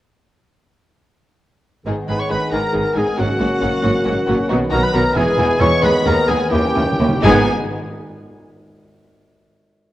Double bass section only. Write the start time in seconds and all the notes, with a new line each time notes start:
1.86 G#1
2.09 G#1
2.31 G#1
2.53 G#1
2.75 G#1
2.97 G#1
3.19 G#1
3.41 G#1
3.63 G#1
3.84 G#1
4.06 G#1
4.28 G#1
4.51 B1
4.72 B1
4.94 B1
5.16 E1
5.38 E1
5.60 E1
5.83 D#2
6.05 D#2
6.28 D#2
6.52 D#2
6.75 D#2
6.99 D#2
7.23 G#1